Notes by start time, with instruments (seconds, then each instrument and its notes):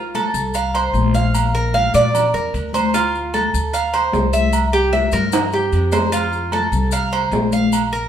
Already playing: cuban tres F4
0.15 cuban tres A4, high conga, low agogo, maracas
0.34 upright bass C2, maracas
0.54 cuban tres F5, high conga, low agogo, maracas
0.74 cuban tres C5, high conga, low agogo, maracas
0.94 upright bass A#1, high conga, maracas
1.14 cuban tres F5, high conga, maracas
1.34 high conga, low agogo, maracas
1.55 cuban tres A#4, maracas
1.74 cuban tres F5, high conga, low agogo, maracas
1.94 upright bass A#2, cuban tres D5, high conga, low agogo, maracas
2.14 high conga, low conga, low agogo, maracas
2.34 upright bass E2, cuban tres A#4, high conga, maracas
2.54 upright bass D2, high conga, low agogo, maracas
2.73 cuban tres C5, high conga, low agogo, maracas
2.94 cuban tres F4, high conga, low agogo, maracas
3.14 high conga, maracas
3.34 cuban tres A4, high conga, low agogo, maracas
3.54 upright bass D2, maracas
3.73 cuban tres F5, high conga, low agogo, maracas
3.94 cuban tres C5, high conga, low agogo, maracas
4.12 upright bass C2, high conga, low timbale, maracas
4.33 cuban tres E5, high conga, maracas
4.53 low agogo, maracas
4.73 cuban tres G4, maracas
4.92 cuban tres E5, high conga, low agogo, maracas
5.12 upright bass G2, cuban tres A#4, high conga, low agogo, maracas
5.32 high conga, low conga, high timbale, low agogo, maracas
5.52 cuban tres G4, high conga, maracas
5.72 upright bass F2, high conga, low agogo, maracas
5.92 cuban tres C5, high conga, low timbale, low agogo, maracas
6.12 cuban tres F4, high conga, low agogo, maracas
6.33 maracas
6.52 cuban tres A4, high conga, low agogo, maracas
6.72 upright bass C2, maracas
6.92 cuban tres F5, low agogo, maracas
7.12 cuban tres C5, high conga, low agogo, maracas
7.31 upright bass A#1, high conga, low timbale, maracas
7.52 cuban tres F5, high conga, maracas
7.72 high conga, low agogo, maracas
7.92 cuban tres A#4, high conga, maracas